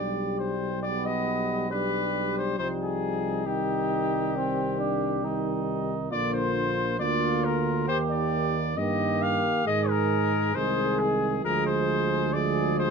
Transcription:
0.00 2.55 B1 soft
0.00 1.66 G3 soft
0.00 1.67 G3 soft
0.00 0.52 D4 soft
0.00 0.39 D5 soft
0.39 0.82 C5 soft
0.83 1.72 B3 soft
0.83 1.07 D5 medium
1.05 1.71 D#5 medium
1.70 2.60 G3 soft
1.70 2.57 G3 soft
1.70 2.59 D4 soft
1.70 2.36 B4 medium
2.38 2.58 C5 medium
2.58 6.08 C2 soft
2.58 3.48 F3 soft
2.58 3.45 G3 soft
2.58 3.45 D#4 soft
2.58 2.68 C5 medium
2.80 3.48 G#4 medium
3.46 5.22 D#3 soft
3.46 5.20 G3 soft
3.46 4.38 D#4 soft
3.46 5.67 G4 medium
4.36 4.79 C4 medium
4.79 5.26 D4 medium
5.22 6.09 D#3 soft
5.22 5.94 G3 soft
5.22 6.11 D#4 soft
6.11 7.02 A#1 medium
6.11 6.83 D3 soft
6.11 6.95 A#3 soft
6.11 6.95 F4 medium
6.11 6.32 D5 medium
6.34 6.98 C5 medium
6.99 7.90 D2 medium
6.99 7.90 D3 soft
6.99 7.85 A#3 soft
6.99 7.90 F4 medium
6.99 7.46 D5 medium
7.44 7.87 A#4 medium
7.88 8.80 D#2 medium
7.88 8.77 D#3 medium
7.88 8.75 A#3 medium
7.88 8.60 G4 medium
7.88 7.98 C5 medium
8.11 8.79 D5 medium
8.77 9.50 G2 soft
8.77 9.65 D#3 medium
8.77 9.67 A#3 soft
8.77 9.68 G4 medium
8.77 9.24 D#5 medium
9.22 9.66 F5 medium
9.65 10.57 G#2 medium
9.65 10.53 D#3 medium
9.65 10.55 G#3 medium
9.65 10.55 G#4 medium
9.65 9.90 D#5 medium
9.89 10.57 A#4 medium
10.55 11.44 C2 medium
10.55 11.46 D#3 soft
10.55 11.43 G#3 medium
10.55 11.43 G#4 medium
10.55 11.01 C5 medium
11.00 11.44 G#4 medium
11.44 12.90 D2 medium
11.44 12.33 F3 medium
11.44 12.31 G#3 medium
11.44 12.32 G#4 medium
11.44 11.66 A#4 medium
11.67 12.35 C5 medium
12.33 12.90 F3 medium
12.33 12.90 G#3 soft
12.33 12.90 G#4 medium
12.33 12.78 D5 medium
12.80 12.90 C5 medium

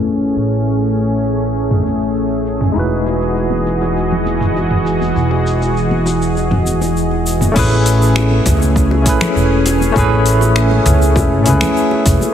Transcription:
0.00 0.33 A1 medium
0.00 2.71 A3 medium
0.00 2.72 A3 medium
0.00 2.72 C#4 medium
0.00 2.72 E4 medium
0.00 2.72 G#4 medium
0.00 2.73 G#4 medium
0.00 2.74 B4 medium
0.06 shaker medium
0.22 shaker soft
0.36 2.73 A1 medium
0.36 shaker soft
0.67 shaker medium
0.82 shaker soft
0.96 shaker soft
1.27 shaker medium
1.42 shaker soft
1.57 shaker soft
1.71 mid tom medium
1.87 shaker medium
2.02 shaker soft
2.17 shaker soft
2.46 shaker medium
2.61 mid tom medium
2.61 shaker soft
2.72 5.13 E1 medium
2.72 7.52 E3 medium
2.72 7.50 G#3 medium
2.72 7.51 D#4 medium
2.72 7.52 E4 medium
2.72 7.52 F#4 medium
2.72 7.52 D#5 medium
2.76 7.53 F#4 medium
2.76 7.52 G#4 medium
2.76 7.54 B4 medium
2.76 shaker soft
3.06 high bongo medium
3.06 shaker medium
3.22 shaker soft
3.35 high bongo soft
3.35 shaker soft
3.50 high conga medium
3.67 shaker medium
3.81 high bongo medium
3.81 shaker soft
3.97 shaker soft
4.12 high bongo soft
4.12 low conga medium
4.26 high conga medium
4.26 shaker medium
4.41 mid tom soft
4.41 shaker soft
4.56 high bongo medium
4.56 shaker soft
4.71 mid tom soft
4.85 high bongo soft
4.85 shaker medium
5.01 high conga medium
5.01 shaker soft
5.16 7.53 E1 medium
5.16 shaker soft
5.31 high bongo medium
5.47 shaker medium
5.61 high bongo soft
5.61 shaker soft
5.77 shaker soft
5.91 high conga medium
6.06 high bongo medium
6.06 shaker medium
6.22 shaker soft
6.35 high bongo soft
6.35 shaker soft
6.51 mid tom medium
6.51 low conga medium
6.66 high conga medium
6.66 shaker medium
6.81 high bongo medium
6.81 shaker soft
6.97 shaker soft
7.11 high bongo soft
7.27 shaker medium
7.41 mid tom medium
7.41 high conga medium
7.41 shaker soft
7.52 9.00 A3 loud
7.52 9.01 C#4 medium
7.52 9.02 E4 medium
7.56 8.38 A1 loud
7.56 12.32 A3 medium
7.56 12.32 C#4 medium
7.56 12.32 G#4 medium
7.56 9.03 G#4 medium
7.56 9.04 B4 loud
7.56 kick loud
7.56 mid tom medium
7.56 crash loud
7.56 shaker soft
7.72 high bongo soft
7.86 open hi-hat medium
7.86 shaker medium
8.02 shaker soft
8.16 finger snap medium
8.16 high bongo medium
8.16 shaker soft
8.31 high conga medium
8.46 9.06 C#2 loud
8.46 kick medium
8.46 mid tom medium
8.46 open hi-hat medium
8.46 high bongo medium
8.46 shaker medium
8.62 shaker soft
8.76 kick loud
8.76 shaker soft
8.91 high bongo medium
9.02 9.16 A1 medium
9.02 9.90 A3 medium
9.02 9.91 C#4 medium
9.02 9.92 E4 medium
9.02 kick loud
9.02 open hi-hat medium
9.02 high conga medium
9.07 9.93 G#4 medium
9.07 9.94 B4 medium
9.07 shaker medium
9.21 finger snap medium
9.21 high bongo medium
9.21 low conga medium
9.21 shaker soft
9.36 9.88 E1 medium
9.36 shaker soft
9.66 open hi-hat medium
9.66 high bongo medium
9.66 shaker medium
9.81 high conga medium
9.81 shaker soft
9.92 10.78 A1 loud
9.92 11.40 A3 loud
9.92 11.41 C#4 medium
9.92 11.42 E4 medium
9.92 kick loud
9.92 mid tom medium
9.96 11.43 G#4 loud
9.96 11.44 B4 loud
9.96 high bongo medium
9.96 shaker soft
10.26 open hi-hat medium
10.26 shaker medium
10.41 high bongo medium
10.41 shaker soft
10.56 finger snap medium
10.56 shaker soft
10.71 high bongo medium
10.71 high conga loud
10.86 11.17 C#2 loud
10.86 mid tom medium
10.86 open hi-hat medium
10.86 shaker medium
11.02 shaker soft
11.16 11.46 E1 medium
11.16 kick loud
11.16 high bongo medium
11.16 shaker soft
11.42 11.56 C#2 medium
11.42 12.31 A3 medium
11.42 12.31 C#4 medium
11.42 12.32 E4 medium
11.42 mid tom medium
11.42 open hi-hat medium
11.42 high bongo medium
11.42 high conga medium
11.47 12.33 G#4 medium
11.47 12.34 B4 medium
11.47 shaker medium
11.61 finger snap medium
11.61 low conga medium
11.61 shaker soft
11.77 shaker soft
11.91 high bongo medium
12.06 12.16 E1 loud
12.06 kick loud
12.06 open hi-hat medium
12.06 shaker medium
12.21 high bongo medium
12.21 high conga medium
12.21 shaker soft

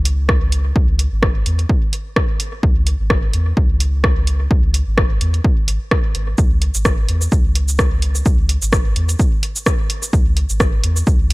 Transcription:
0.00 0.73 C#2 loud
0.05 closed hi-hat medium
0.29 kick loud
0.29 cross-stick medium
0.52 closed hi-hat medium
0.76 1.08 C#2 loud
0.76 kick loud
0.99 closed hi-hat medium
1.12 1.43 G#1 medium
1.23 kick loud
1.23 cross-stick medium
1.46 1.66 E2 medium
1.46 closed hi-hat medium
1.59 closed hi-hat soft
1.69 kick loud
1.93 closed hi-hat medium
2.16 kick loud
2.16 cross-stick medium
2.40 closed hi-hat medium
2.63 2.96 C#2 loud
2.63 kick loud
2.87 closed hi-hat medium
3.00 3.30 G#1 medium
3.10 kick loud
3.10 cross-stick medium
3.33 3.53 E2 medium
3.33 closed hi-hat medium
3.57 4.48 C#2 medium
3.57 kick loud
3.80 closed hi-hat medium
4.04 kick loud
4.04 cross-stick medium
4.27 closed hi-hat medium
4.51 4.83 C#2 loud
4.51 kick loud
4.74 closed hi-hat medium
4.87 5.18 G#1 medium
4.98 kick loud
4.98 cross-stick medium
5.21 5.41 E2 loud
5.21 closed hi-hat medium
5.34 closed hi-hat soft
5.44 kick loud
5.68 5.78 G#1 medium
5.68 closed hi-hat medium
5.91 kick loud
5.91 cross-stick medium
6.15 6.34 G#1 medium
6.15 closed hi-hat medium
6.38 6.71 C#2 loud
6.38 kick loud
6.38 shaker soft
6.62 closed hi-hat medium
6.75 7.05 G#1 medium
6.75 shaker medium
6.85 kick loud
6.85 cross-stick medium
6.85 shaker soft
7.08 7.28 E2 medium
7.08 closed hi-hat medium
7.22 shaker soft
7.32 8.23 C#2 medium
7.32 kick loud
7.32 shaker soft
7.55 closed hi-hat medium
7.68 shaker medium
7.79 kick loud
7.79 cross-stick medium
7.79 shaker soft
8.02 closed hi-hat medium
8.15 shaker medium
8.26 8.58 C#2 loud
8.26 kick loud
8.26 shaker soft
8.49 closed hi-hat medium
8.62 8.93 G#1 medium
8.62 shaker medium
8.73 kick loud
8.73 cross-stick medium
8.73 shaker soft
8.96 9.15 E2 loud
8.96 closed hi-hat medium
9.09 closed hi-hat soft
9.09 shaker medium
9.19 kick loud
9.19 shaker soft
9.43 closed hi-hat medium
9.56 shaker medium
9.66 kick loud
9.66 cross-stick medium
9.66 shaker soft
9.90 closed hi-hat medium
10.03 shaker medium
10.13 10.46 C#2 loud
10.13 kick loud
10.13 shaker soft
10.37 closed hi-hat medium
10.50 10.80 G#1 medium
10.50 shaker medium
10.60 kick loud
10.60 cross-stick medium
10.60 shaker soft
10.84 11.03 E2 loud
10.84 closed hi-hat medium
10.97 shaker medium
11.07 11.33 C#2 medium
11.07 kick loud
11.07 shaker soft

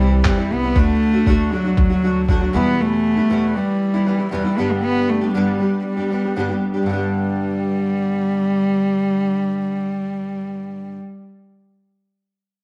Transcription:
0.00 0.21 C2 loud
0.00 0.24 E3 soft
0.00 0.24 G3 soft
0.00 0.26 G3 medium
0.00 0.24 C4 medium
0.00 0.25 E4 medium
0.25 0.49 E2 medium
0.25 0.37 C3 medium
0.25 0.38 E3 medium
0.25 0.38 G3 medium
0.25 0.54 G3 medium
0.25 0.37 C4 medium
0.25 0.36 E4 medium
0.25 kick loud
0.25 clap loud
0.37 0.63 G3 soft
0.37 0.62 C4 soft
0.37 0.61 E4 soft
0.50 0.74 C2 medium
0.50 0.79 B3 medium
0.63 0.75 G3 soft
0.63 0.76 C4 soft
0.63 0.76 E4 soft
0.75 1.23 D2 medium
0.75 1.14 D3 medium
0.75 1.14 A3 medium
0.75 1.54 A3 medium
0.75 1.13 D4 medium
0.75 1.12 F#4 medium
0.75 kick medium
1.13 1.26 A3 soft
1.13 1.26 D4 soft
1.13 1.26 F#4 soft
1.26 1.74 D2 medium
1.26 1.50 D3 medium
1.26 1.51 A3 medium
1.26 1.51 D4 medium
1.26 1.52 F#4 medium
1.26 kick medium
1.52 1.65 D3 soft
1.52 2.29 F#3 medium
1.52 1.65 A3 soft
1.52 1.64 D4 soft
1.52 1.63 F#4 soft
1.65 1.90 A3 soft
1.65 1.90 D4 soft
1.65 1.88 F#4 soft
1.77 2.50 D2 loud
1.77 kick medium
1.90 2.02 A3 soft
1.90 2.03 D4 soft
1.90 2.03 F#4 soft
2.03 2.27 D3 soft
2.03 2.28 A3 soft
2.03 2.28 D4 medium
2.03 2.28 F#4 medium
2.28 2.41 D3 medium
2.28 2.58 F#3 medium
2.28 2.41 A3 medium
2.28 2.41 D4 medium
2.28 2.39 F#4 medium
2.28 kick medium
2.41 2.53 A3 soft
2.41 2.54 D4 soft
2.41 2.54 F#4 soft
2.53 3.17 E2 medium
2.53 2.78 E2 medium
2.53 3.17 B2 medium
2.53 3.17 E3 medium
2.53 3.17 G3 medium
2.53 3.17 B3 medium
2.53 2.82 B3 medium
2.53 3.15 E4 medium
2.81 3.58 A3 medium
3.17 3.29 E3 soft
3.17 3.29 G3 soft
3.17 3.29 B3 soft
3.17 3.30 E4 soft
3.30 3.55 E2 medium
3.30 3.56 B2 medium
3.30 3.54 E3 medium
3.30 3.55 G3 medium
3.30 3.55 B3 medium
3.30 3.56 E4 medium
3.55 3.94 E3 soft
3.55 3.94 G3 soft
3.55 4.32 G3 medium
3.55 3.93 B3 soft
3.55 3.92 E4 soft
3.94 4.05 E3 soft
3.94 4.06 G3 soft
3.94 4.06 B3 soft
3.94 4.07 E4 medium
4.06 4.19 E3 medium
4.06 4.19 G3 soft
4.06 4.18 B3 soft
4.06 4.17 E4 medium
4.18 4.31 E3 soft
4.18 4.31 G3 soft
4.18 4.32 B3 soft
4.18 4.31 E4 soft
4.31 4.44 E2 medium
4.31 4.45 B2 medium
4.31 4.45 E3 medium
4.31 4.44 G3 medium
4.31 4.60 G3 medium
4.31 4.44 B3 medium
4.31 4.43 E4 medium
4.44 4.58 E3 soft
4.44 4.57 G3 soft
4.44 4.57 B3 soft
4.44 4.57 E4 soft
4.58 5.21 G2 medium
4.58 5.34 D3 medium
4.58 5.22 G3 medium
4.58 4.73 B3 medium
4.58 5.22 B3 medium
4.58 5.21 D4 medium
4.58 5.21 G4 medium
4.72 4.85 G3 medium
4.84 5.11 B3 medium
5.09 5.35 A3 medium
5.21 5.33 G3 soft
5.21 5.34 B3 soft
5.21 5.34 D4 soft
5.21 5.34 G4 soft
5.34 5.60 G2 medium
5.34 5.60 D3 medium
5.34 5.58 G3 medium
5.34 5.82 G3 medium
5.34 5.58 B3 medium
5.34 5.59 D4 medium
5.34 5.59 G4 medium
5.59 5.97 G3 soft
5.59 5.97 B3 soft
5.59 5.97 D4 soft
5.59 5.96 G4 soft
5.87 6.58 G3 medium
5.97 6.09 G3 soft
5.97 6.10 B3 soft
5.97 6.10 D4 soft
5.97 6.10 G4 soft
6.10 6.23 G3 soft
6.10 6.24 B3 soft
6.10 6.23 D4 soft
6.10 6.22 G4 medium
6.24 6.35 G3 soft
6.24 6.35 B3 soft
6.24 6.36 D4 soft
6.24 6.36 G4 soft
6.36 6.49 G2 medium
6.36 6.49 D3 medium
6.36 6.49 G3 medium
6.36 6.49 B3 medium
6.36 6.48 D4 medium
6.36 6.47 G4 medium
6.49 6.74 G3 soft
6.49 6.74 B3 soft
6.49 6.73 D4 soft
6.49 6.73 G4 soft
6.74 6.88 G3 soft
6.74 6.88 B3 soft
6.74 6.87 D4 soft
6.74 6.87 G4 soft
6.83 10.95 G2 medium
6.83 10.99 D3 medium
6.87 10.96 G3 medium
6.87 11.01 G3 medium
6.87 11.03 B3 medium
6.93 11.05 D4 medium
6.93 11.08 G4 medium

